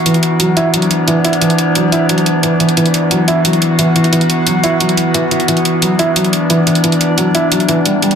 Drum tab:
HH |xxx-x-x-xxx-x-xx|xxx-x-x-xxx-x-xx|xxx-x-x-xxx-x-xx|xxx-x-x-xxx-x-xx|

HH |xxx-x-x-xxx-x-xx|xxx-x-x-xxx-x-xx|